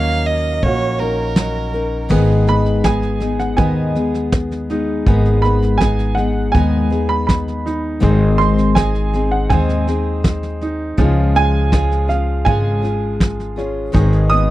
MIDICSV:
0, 0, Header, 1, 7, 480
1, 0, Start_track
1, 0, Tempo, 739827
1, 1368, Time_signature, 4, 2, 24, 8
1, 9410, End_track
2, 0, Start_track
2, 0, Title_t, "Upright piano"
2, 0, Program_c, 0, 0
2, 1613, Note_on_c, 0, 83, 94
2, 1847, Note_on_c, 0, 80, 88
2, 1857, Note_off_c, 0, 83, 0
2, 2203, Note_on_c, 0, 78, 73
2, 2217, Note_off_c, 0, 80, 0
2, 2314, Note_on_c, 0, 80, 77
2, 2316, Note_off_c, 0, 78, 0
2, 2773, Note_off_c, 0, 80, 0
2, 3516, Note_on_c, 0, 83, 92
2, 3748, Note_on_c, 0, 80, 91
2, 3767, Note_off_c, 0, 83, 0
2, 3989, Note_on_c, 0, 78, 81
2, 4003, Note_off_c, 0, 80, 0
2, 4229, Note_on_c, 0, 80, 90
2, 4244, Note_off_c, 0, 78, 0
2, 4600, Note_on_c, 0, 83, 91
2, 4607, Note_off_c, 0, 80, 0
2, 4707, Note_off_c, 0, 83, 0
2, 4716, Note_on_c, 0, 83, 79
2, 5054, Note_off_c, 0, 83, 0
2, 5438, Note_on_c, 0, 84, 96
2, 5664, Note_off_c, 0, 84, 0
2, 5678, Note_on_c, 0, 80, 89
2, 6044, Note_on_c, 0, 78, 79
2, 6052, Note_off_c, 0, 80, 0
2, 6161, Note_on_c, 0, 80, 82
2, 6167, Note_off_c, 0, 78, 0
2, 6617, Note_off_c, 0, 80, 0
2, 7371, Note_on_c, 0, 80, 109
2, 7843, Note_on_c, 0, 77, 79
2, 7863, Note_off_c, 0, 80, 0
2, 8078, Note_on_c, 0, 80, 91
2, 8092, Note_off_c, 0, 77, 0
2, 8777, Note_off_c, 0, 80, 0
2, 9275, Note_on_c, 0, 87, 111
2, 9410, Note_off_c, 0, 87, 0
2, 9410, End_track
3, 0, Start_track
3, 0, Title_t, "Fiddle"
3, 0, Program_c, 1, 110
3, 0, Note_on_c, 1, 77, 101
3, 168, Note_on_c, 1, 75, 93
3, 178, Note_off_c, 1, 77, 0
3, 406, Note_on_c, 1, 73, 94
3, 415, Note_off_c, 1, 75, 0
3, 642, Note_on_c, 1, 70, 88
3, 651, Note_off_c, 1, 73, 0
3, 1364, Note_off_c, 1, 70, 0
3, 9410, End_track
4, 0, Start_track
4, 0, Title_t, "Steel-string acoustic guitar"
4, 0, Program_c, 2, 25
4, 0, Note_on_c, 2, 54, 67
4, 0, Note_on_c, 2, 61, 60
4, 0, Note_on_c, 2, 63, 66
4, 0, Note_on_c, 2, 70, 69
4, 642, Note_off_c, 2, 70, 0
4, 647, Note_off_c, 2, 54, 0
4, 649, Note_off_c, 2, 63, 0
4, 650, Note_on_c, 2, 70, 60
4, 651, Note_off_c, 2, 61, 0
4, 657, Note_on_c, 2, 63, 54
4, 663, Note_on_c, 2, 61, 47
4, 889, Note_off_c, 2, 70, 0
4, 892, Note_off_c, 2, 63, 0
4, 892, Note_on_c, 2, 54, 66
4, 894, Note_off_c, 2, 61, 0
4, 902, Note_on_c, 2, 61, 65
4, 903, Note_on_c, 2, 63, 69
4, 907, Note_on_c, 2, 70, 69
4, 1117, Note_off_c, 2, 70, 0
4, 1125, Note_on_c, 2, 70, 61
4, 1126, Note_off_c, 2, 63, 0
4, 1130, Note_off_c, 2, 54, 0
4, 1130, Note_off_c, 2, 61, 0
4, 1134, Note_on_c, 2, 63, 53
4, 1138, Note_on_c, 2, 61, 49
4, 1353, Note_off_c, 2, 63, 0
4, 1354, Note_on_c, 2, 44, 86
4, 1358, Note_off_c, 2, 61, 0
4, 1358, Note_on_c, 2, 51, 91
4, 1359, Note_on_c, 2, 56, 95
4, 1361, Note_on_c, 2, 59, 88
4, 1361, Note_on_c, 2, 63, 85
4, 1362, Note_off_c, 2, 70, 0
4, 1365, Note_on_c, 2, 68, 96
4, 1839, Note_off_c, 2, 56, 0
4, 1840, Note_off_c, 2, 44, 0
4, 1842, Note_off_c, 2, 51, 0
4, 1842, Note_on_c, 2, 56, 57
4, 1843, Note_off_c, 2, 59, 0
4, 1847, Note_off_c, 2, 63, 0
4, 1849, Note_on_c, 2, 63, 62
4, 1850, Note_on_c, 2, 59, 57
4, 1856, Note_off_c, 2, 68, 0
4, 1859, Note_on_c, 2, 68, 61
4, 2068, Note_off_c, 2, 68, 0
4, 2076, Note_on_c, 2, 68, 47
4, 2077, Note_off_c, 2, 63, 0
4, 2080, Note_off_c, 2, 59, 0
4, 2084, Note_off_c, 2, 56, 0
4, 2085, Note_on_c, 2, 63, 50
4, 2088, Note_on_c, 2, 59, 49
4, 2091, Note_on_c, 2, 56, 41
4, 2311, Note_off_c, 2, 56, 0
4, 2315, Note_off_c, 2, 68, 0
4, 2315, Note_on_c, 2, 44, 76
4, 2316, Note_off_c, 2, 63, 0
4, 2317, Note_on_c, 2, 51, 75
4, 2318, Note_off_c, 2, 59, 0
4, 2319, Note_on_c, 2, 56, 80
4, 2323, Note_on_c, 2, 63, 87
4, 2323, Note_on_c, 2, 68, 77
4, 2325, Note_on_c, 2, 59, 82
4, 2557, Note_off_c, 2, 68, 0
4, 2558, Note_off_c, 2, 63, 0
4, 2560, Note_off_c, 2, 44, 0
4, 2560, Note_off_c, 2, 59, 0
4, 2561, Note_off_c, 2, 51, 0
4, 2562, Note_off_c, 2, 56, 0
4, 2565, Note_on_c, 2, 63, 46
4, 2565, Note_on_c, 2, 68, 53
4, 2568, Note_on_c, 2, 59, 45
4, 2572, Note_on_c, 2, 56, 41
4, 3043, Note_off_c, 2, 59, 0
4, 3046, Note_off_c, 2, 68, 0
4, 3047, Note_off_c, 2, 63, 0
4, 3049, Note_on_c, 2, 63, 51
4, 3049, Note_on_c, 2, 68, 49
4, 3051, Note_off_c, 2, 56, 0
4, 3051, Note_on_c, 2, 59, 49
4, 3054, Note_on_c, 2, 56, 45
4, 3284, Note_off_c, 2, 59, 0
4, 3285, Note_off_c, 2, 56, 0
4, 3285, Note_off_c, 2, 63, 0
4, 3285, Note_off_c, 2, 68, 0
4, 3287, Note_on_c, 2, 51, 83
4, 3288, Note_on_c, 2, 44, 81
4, 3292, Note_on_c, 2, 59, 90
4, 3293, Note_on_c, 2, 56, 91
4, 3293, Note_on_c, 2, 63, 87
4, 3293, Note_on_c, 2, 68, 88
4, 3764, Note_off_c, 2, 56, 0
4, 3765, Note_off_c, 2, 51, 0
4, 3766, Note_off_c, 2, 44, 0
4, 3766, Note_off_c, 2, 59, 0
4, 3767, Note_on_c, 2, 56, 53
4, 3773, Note_on_c, 2, 59, 58
4, 3775, Note_off_c, 2, 63, 0
4, 3778, Note_on_c, 2, 63, 63
4, 3783, Note_off_c, 2, 68, 0
4, 3785, Note_on_c, 2, 68, 61
4, 3995, Note_off_c, 2, 68, 0
4, 3997, Note_off_c, 2, 63, 0
4, 4000, Note_off_c, 2, 59, 0
4, 4003, Note_on_c, 2, 68, 51
4, 4005, Note_off_c, 2, 56, 0
4, 4005, Note_on_c, 2, 63, 47
4, 4008, Note_on_c, 2, 59, 46
4, 4015, Note_on_c, 2, 56, 44
4, 4242, Note_off_c, 2, 59, 0
4, 4243, Note_off_c, 2, 68, 0
4, 4244, Note_off_c, 2, 56, 0
4, 4244, Note_off_c, 2, 63, 0
4, 4246, Note_on_c, 2, 51, 77
4, 4248, Note_on_c, 2, 44, 79
4, 4250, Note_on_c, 2, 59, 85
4, 4251, Note_on_c, 2, 56, 78
4, 4257, Note_on_c, 2, 63, 79
4, 4257, Note_on_c, 2, 68, 81
4, 4470, Note_off_c, 2, 68, 0
4, 4474, Note_off_c, 2, 63, 0
4, 4478, Note_on_c, 2, 68, 57
4, 4482, Note_off_c, 2, 59, 0
4, 4482, Note_on_c, 2, 63, 46
4, 4485, Note_off_c, 2, 51, 0
4, 4486, Note_off_c, 2, 44, 0
4, 4486, Note_off_c, 2, 56, 0
4, 4490, Note_on_c, 2, 59, 45
4, 4494, Note_on_c, 2, 56, 43
4, 5191, Note_on_c, 2, 44, 89
4, 5192, Note_off_c, 2, 56, 0
4, 5192, Note_off_c, 2, 63, 0
4, 5194, Note_on_c, 2, 51, 85
4, 5194, Note_on_c, 2, 56, 90
4, 5199, Note_off_c, 2, 59, 0
4, 5199, Note_off_c, 2, 68, 0
4, 5200, Note_on_c, 2, 63, 93
4, 5201, Note_on_c, 2, 68, 98
4, 5202, Note_on_c, 2, 60, 84
4, 5677, Note_off_c, 2, 44, 0
4, 5679, Note_off_c, 2, 51, 0
4, 5682, Note_off_c, 2, 63, 0
4, 5683, Note_off_c, 2, 56, 0
4, 5683, Note_off_c, 2, 60, 0
4, 5686, Note_on_c, 2, 56, 63
4, 5692, Note_off_c, 2, 68, 0
4, 5693, Note_on_c, 2, 60, 60
4, 5693, Note_on_c, 2, 63, 58
4, 5695, Note_on_c, 2, 68, 67
4, 5921, Note_off_c, 2, 68, 0
4, 5925, Note_off_c, 2, 56, 0
4, 5928, Note_off_c, 2, 60, 0
4, 5928, Note_off_c, 2, 63, 0
4, 5929, Note_on_c, 2, 68, 55
4, 5936, Note_on_c, 2, 63, 50
4, 5939, Note_on_c, 2, 60, 50
4, 5943, Note_on_c, 2, 56, 42
4, 6166, Note_off_c, 2, 68, 0
4, 6167, Note_off_c, 2, 56, 0
4, 6168, Note_off_c, 2, 60, 0
4, 6170, Note_off_c, 2, 63, 0
4, 6171, Note_on_c, 2, 44, 74
4, 6172, Note_on_c, 2, 51, 79
4, 6175, Note_on_c, 2, 56, 82
4, 6176, Note_on_c, 2, 60, 84
4, 6179, Note_on_c, 2, 68, 93
4, 6182, Note_on_c, 2, 63, 80
4, 6397, Note_off_c, 2, 68, 0
4, 6400, Note_off_c, 2, 60, 0
4, 6400, Note_off_c, 2, 63, 0
4, 6402, Note_off_c, 2, 56, 0
4, 6405, Note_on_c, 2, 68, 53
4, 6408, Note_off_c, 2, 44, 0
4, 6408, Note_off_c, 2, 51, 0
4, 6408, Note_on_c, 2, 60, 47
4, 6408, Note_on_c, 2, 63, 52
4, 6410, Note_on_c, 2, 56, 40
4, 7118, Note_off_c, 2, 56, 0
4, 7120, Note_on_c, 2, 56, 88
4, 7122, Note_on_c, 2, 49, 81
4, 7124, Note_off_c, 2, 60, 0
4, 7125, Note_off_c, 2, 63, 0
4, 7127, Note_on_c, 2, 61, 93
4, 7128, Note_off_c, 2, 68, 0
4, 7128, Note_on_c, 2, 65, 92
4, 7130, Note_on_c, 2, 68, 90
4, 7595, Note_off_c, 2, 61, 0
4, 7599, Note_off_c, 2, 56, 0
4, 7601, Note_off_c, 2, 65, 0
4, 7602, Note_on_c, 2, 56, 58
4, 7603, Note_on_c, 2, 61, 57
4, 7604, Note_off_c, 2, 49, 0
4, 7608, Note_on_c, 2, 65, 65
4, 7613, Note_off_c, 2, 68, 0
4, 7615, Note_on_c, 2, 68, 64
4, 7830, Note_off_c, 2, 68, 0
4, 7837, Note_off_c, 2, 65, 0
4, 7838, Note_on_c, 2, 68, 50
4, 7843, Note_off_c, 2, 61, 0
4, 7844, Note_off_c, 2, 56, 0
4, 7845, Note_on_c, 2, 65, 51
4, 7850, Note_on_c, 2, 61, 40
4, 8079, Note_off_c, 2, 61, 0
4, 8079, Note_off_c, 2, 65, 0
4, 8082, Note_off_c, 2, 68, 0
4, 8084, Note_on_c, 2, 49, 78
4, 8084, Note_on_c, 2, 56, 73
4, 8087, Note_on_c, 2, 61, 71
4, 8087, Note_on_c, 2, 65, 77
4, 8091, Note_on_c, 2, 68, 89
4, 8309, Note_off_c, 2, 68, 0
4, 8316, Note_off_c, 2, 65, 0
4, 8317, Note_on_c, 2, 68, 48
4, 8319, Note_off_c, 2, 61, 0
4, 8324, Note_on_c, 2, 65, 45
4, 8325, Note_off_c, 2, 49, 0
4, 8325, Note_off_c, 2, 56, 0
4, 8327, Note_on_c, 2, 61, 42
4, 8796, Note_off_c, 2, 68, 0
4, 8798, Note_off_c, 2, 61, 0
4, 8798, Note_on_c, 2, 68, 53
4, 8800, Note_off_c, 2, 65, 0
4, 8806, Note_on_c, 2, 61, 42
4, 8807, Note_on_c, 2, 65, 49
4, 9032, Note_on_c, 2, 44, 84
4, 9034, Note_off_c, 2, 68, 0
4, 9036, Note_on_c, 2, 56, 83
4, 9039, Note_off_c, 2, 61, 0
4, 9039, Note_off_c, 2, 65, 0
4, 9039, Note_on_c, 2, 51, 84
4, 9041, Note_on_c, 2, 59, 84
4, 9042, Note_on_c, 2, 63, 89
4, 9042, Note_on_c, 2, 68, 90
4, 9410, Note_off_c, 2, 44, 0
4, 9410, Note_off_c, 2, 51, 0
4, 9410, Note_off_c, 2, 56, 0
4, 9410, Note_off_c, 2, 59, 0
4, 9410, Note_off_c, 2, 63, 0
4, 9410, Note_off_c, 2, 68, 0
4, 9410, End_track
5, 0, Start_track
5, 0, Title_t, "Upright piano"
5, 0, Program_c, 3, 0
5, 0, Note_on_c, 3, 58, 60
5, 0, Note_on_c, 3, 61, 56
5, 410, Note_off_c, 3, 58, 0
5, 415, Note_off_c, 3, 61, 0
5, 420, Note_on_c, 3, 58, 58
5, 424, Note_on_c, 3, 61, 59
5, 426, Note_on_c, 3, 66, 62
5, 1369, Note_on_c, 3, 59, 77
5, 1375, Note_on_c, 3, 68, 63
5, 1420, Note_off_c, 3, 58, 0
5, 1422, Note_off_c, 3, 61, 0
5, 1423, Note_off_c, 3, 66, 0
5, 1600, Note_off_c, 3, 59, 0
5, 1610, Note_on_c, 3, 59, 57
5, 1836, Note_off_c, 3, 68, 0
5, 1846, Note_on_c, 3, 68, 66
5, 2318, Note_off_c, 3, 59, 0
5, 2328, Note_on_c, 3, 59, 62
5, 3052, Note_on_c, 3, 63, 56
5, 3280, Note_off_c, 3, 59, 0
5, 3281, Note_off_c, 3, 68, 0
5, 3290, Note_on_c, 3, 59, 71
5, 3291, Note_on_c, 3, 68, 64
5, 3526, Note_off_c, 3, 59, 0
5, 3536, Note_on_c, 3, 59, 59
5, 3758, Note_off_c, 3, 68, 0
5, 3768, Note_on_c, 3, 68, 63
5, 4238, Note_off_c, 3, 59, 0
5, 4248, Note_on_c, 3, 59, 64
5, 4959, Note_off_c, 3, 63, 0
5, 4968, Note_on_c, 3, 63, 57
5, 5201, Note_off_c, 3, 68, 0
5, 5206, Note_off_c, 3, 59, 0
5, 5208, Note_on_c, 3, 60, 73
5, 5210, Note_on_c, 3, 68, 66
5, 5254, Note_off_c, 3, 63, 0
5, 5442, Note_off_c, 3, 60, 0
5, 5452, Note_on_c, 3, 60, 61
5, 5678, Note_off_c, 3, 68, 0
5, 5688, Note_on_c, 3, 68, 66
5, 6163, Note_off_c, 3, 60, 0
5, 6172, Note_on_c, 3, 60, 66
5, 6894, Note_on_c, 3, 63, 58
5, 7121, Note_off_c, 3, 68, 0
5, 7128, Note_on_c, 3, 53, 75
5, 7131, Note_on_c, 3, 68, 64
5, 7177, Note_off_c, 3, 60, 0
5, 7177, Note_off_c, 3, 63, 0
5, 7369, Note_on_c, 3, 56, 57
5, 7604, Note_off_c, 3, 68, 0
5, 7613, Note_on_c, 3, 68, 65
5, 8080, Note_off_c, 3, 56, 0
5, 8090, Note_on_c, 3, 56, 59
5, 8809, Note_on_c, 3, 61, 58
5, 9039, Note_off_c, 3, 68, 0
5, 9042, Note_on_c, 3, 51, 69
5, 9048, Note_off_c, 3, 53, 0
5, 9049, Note_on_c, 3, 68, 64
5, 9096, Note_off_c, 3, 61, 0
5, 9097, Note_off_c, 3, 56, 0
5, 9287, Note_on_c, 3, 59, 57
5, 9410, Note_off_c, 3, 51, 0
5, 9410, Note_off_c, 3, 59, 0
5, 9410, Note_off_c, 3, 68, 0
5, 9410, End_track
6, 0, Start_track
6, 0, Title_t, "Upright bass"
6, 0, Program_c, 4, 32
6, 0, Note_on_c, 4, 39, 98
6, 381, Note_off_c, 4, 39, 0
6, 410, Note_on_c, 4, 34, 84
6, 1342, Note_off_c, 4, 34, 0
6, 1362, Note_on_c, 4, 32, 92
6, 2297, Note_off_c, 4, 32, 0
6, 2322, Note_on_c, 4, 39, 81
6, 3256, Note_off_c, 4, 39, 0
6, 3287, Note_on_c, 4, 32, 98
6, 4219, Note_off_c, 4, 32, 0
6, 4245, Note_on_c, 4, 39, 84
6, 5178, Note_off_c, 4, 39, 0
6, 5209, Note_on_c, 4, 32, 104
6, 6140, Note_off_c, 4, 32, 0
6, 6168, Note_on_c, 4, 39, 84
6, 7100, Note_off_c, 4, 39, 0
6, 7126, Note_on_c, 4, 37, 93
6, 8060, Note_off_c, 4, 37, 0
6, 8084, Note_on_c, 4, 32, 80
6, 9020, Note_off_c, 4, 32, 0
6, 9048, Note_on_c, 4, 32, 96
6, 9410, Note_off_c, 4, 32, 0
6, 9410, End_track
7, 0, Start_track
7, 0, Title_t, "Drums"
7, 408, Note_on_c, 9, 36, 68
7, 473, Note_off_c, 9, 36, 0
7, 882, Note_on_c, 9, 38, 90
7, 947, Note_off_c, 9, 38, 0
7, 1366, Note_on_c, 9, 36, 81
7, 1366, Note_on_c, 9, 38, 25
7, 1366, Note_on_c, 9, 49, 76
7, 1431, Note_off_c, 9, 36, 0
7, 1431, Note_off_c, 9, 38, 0
7, 1431, Note_off_c, 9, 49, 0
7, 1602, Note_on_c, 9, 38, 28
7, 1667, Note_off_c, 9, 38, 0
7, 1723, Note_on_c, 9, 38, 25
7, 1787, Note_off_c, 9, 38, 0
7, 1842, Note_on_c, 9, 38, 84
7, 1845, Note_on_c, 9, 36, 64
7, 1907, Note_off_c, 9, 38, 0
7, 1910, Note_off_c, 9, 36, 0
7, 1961, Note_on_c, 9, 38, 28
7, 2025, Note_off_c, 9, 38, 0
7, 2079, Note_on_c, 9, 38, 28
7, 2144, Note_off_c, 9, 38, 0
7, 2202, Note_on_c, 9, 38, 25
7, 2267, Note_off_c, 9, 38, 0
7, 2321, Note_on_c, 9, 38, 25
7, 2324, Note_on_c, 9, 36, 88
7, 2385, Note_off_c, 9, 38, 0
7, 2389, Note_off_c, 9, 36, 0
7, 2565, Note_on_c, 9, 38, 27
7, 2630, Note_off_c, 9, 38, 0
7, 2687, Note_on_c, 9, 38, 25
7, 2752, Note_off_c, 9, 38, 0
7, 2805, Note_on_c, 9, 36, 71
7, 2806, Note_on_c, 9, 38, 91
7, 2870, Note_off_c, 9, 36, 0
7, 2870, Note_off_c, 9, 38, 0
7, 2928, Note_on_c, 9, 38, 28
7, 2993, Note_off_c, 9, 38, 0
7, 3048, Note_on_c, 9, 38, 28
7, 3113, Note_off_c, 9, 38, 0
7, 3286, Note_on_c, 9, 36, 85
7, 3287, Note_on_c, 9, 38, 26
7, 3351, Note_off_c, 9, 36, 0
7, 3352, Note_off_c, 9, 38, 0
7, 3407, Note_on_c, 9, 38, 27
7, 3472, Note_off_c, 9, 38, 0
7, 3529, Note_on_c, 9, 38, 28
7, 3594, Note_off_c, 9, 38, 0
7, 3648, Note_on_c, 9, 38, 25
7, 3713, Note_off_c, 9, 38, 0
7, 3767, Note_on_c, 9, 36, 65
7, 3770, Note_on_c, 9, 38, 84
7, 3832, Note_off_c, 9, 36, 0
7, 3835, Note_off_c, 9, 38, 0
7, 3885, Note_on_c, 9, 38, 29
7, 3950, Note_off_c, 9, 38, 0
7, 4004, Note_on_c, 9, 38, 28
7, 4069, Note_off_c, 9, 38, 0
7, 4246, Note_on_c, 9, 38, 28
7, 4248, Note_on_c, 9, 36, 84
7, 4311, Note_off_c, 9, 38, 0
7, 4313, Note_off_c, 9, 36, 0
7, 4490, Note_on_c, 9, 38, 27
7, 4555, Note_off_c, 9, 38, 0
7, 4729, Note_on_c, 9, 36, 72
7, 4732, Note_on_c, 9, 38, 89
7, 4794, Note_off_c, 9, 36, 0
7, 4796, Note_off_c, 9, 38, 0
7, 4852, Note_on_c, 9, 38, 28
7, 4917, Note_off_c, 9, 38, 0
7, 4973, Note_on_c, 9, 38, 29
7, 5038, Note_off_c, 9, 38, 0
7, 5209, Note_on_c, 9, 36, 85
7, 5209, Note_on_c, 9, 38, 28
7, 5274, Note_off_c, 9, 36, 0
7, 5274, Note_off_c, 9, 38, 0
7, 5453, Note_on_c, 9, 38, 29
7, 5518, Note_off_c, 9, 38, 0
7, 5568, Note_on_c, 9, 38, 27
7, 5633, Note_off_c, 9, 38, 0
7, 5686, Note_on_c, 9, 36, 62
7, 5686, Note_on_c, 9, 38, 85
7, 5750, Note_off_c, 9, 38, 0
7, 5751, Note_off_c, 9, 36, 0
7, 5807, Note_on_c, 9, 38, 27
7, 5872, Note_off_c, 9, 38, 0
7, 5926, Note_on_c, 9, 38, 27
7, 5991, Note_off_c, 9, 38, 0
7, 6165, Note_on_c, 9, 36, 85
7, 6166, Note_on_c, 9, 38, 27
7, 6230, Note_off_c, 9, 36, 0
7, 6231, Note_off_c, 9, 38, 0
7, 6288, Note_on_c, 9, 38, 27
7, 6353, Note_off_c, 9, 38, 0
7, 6407, Note_on_c, 9, 38, 30
7, 6472, Note_off_c, 9, 38, 0
7, 6646, Note_on_c, 9, 36, 70
7, 6646, Note_on_c, 9, 38, 91
7, 6710, Note_off_c, 9, 36, 0
7, 6711, Note_off_c, 9, 38, 0
7, 6767, Note_on_c, 9, 38, 28
7, 6832, Note_off_c, 9, 38, 0
7, 6887, Note_on_c, 9, 38, 29
7, 6951, Note_off_c, 9, 38, 0
7, 7124, Note_on_c, 9, 36, 80
7, 7128, Note_on_c, 9, 38, 26
7, 7189, Note_off_c, 9, 36, 0
7, 7193, Note_off_c, 9, 38, 0
7, 7366, Note_on_c, 9, 38, 30
7, 7431, Note_off_c, 9, 38, 0
7, 7605, Note_on_c, 9, 36, 67
7, 7608, Note_on_c, 9, 38, 84
7, 7670, Note_off_c, 9, 36, 0
7, 7673, Note_off_c, 9, 38, 0
7, 7731, Note_on_c, 9, 38, 27
7, 7796, Note_off_c, 9, 38, 0
7, 7847, Note_on_c, 9, 38, 28
7, 7912, Note_off_c, 9, 38, 0
7, 8086, Note_on_c, 9, 36, 84
7, 8088, Note_on_c, 9, 38, 28
7, 8151, Note_off_c, 9, 36, 0
7, 8153, Note_off_c, 9, 38, 0
7, 8331, Note_on_c, 9, 38, 26
7, 8396, Note_off_c, 9, 38, 0
7, 8567, Note_on_c, 9, 36, 69
7, 8570, Note_on_c, 9, 38, 89
7, 8632, Note_off_c, 9, 36, 0
7, 8635, Note_off_c, 9, 38, 0
7, 8692, Note_on_c, 9, 38, 27
7, 8756, Note_off_c, 9, 38, 0
7, 8813, Note_on_c, 9, 38, 26
7, 8878, Note_off_c, 9, 38, 0
7, 9048, Note_on_c, 9, 36, 85
7, 9051, Note_on_c, 9, 38, 28
7, 9113, Note_off_c, 9, 36, 0
7, 9115, Note_off_c, 9, 38, 0
7, 9165, Note_on_c, 9, 38, 28
7, 9230, Note_off_c, 9, 38, 0
7, 9284, Note_on_c, 9, 38, 28
7, 9349, Note_off_c, 9, 38, 0
7, 9410, End_track
0, 0, End_of_file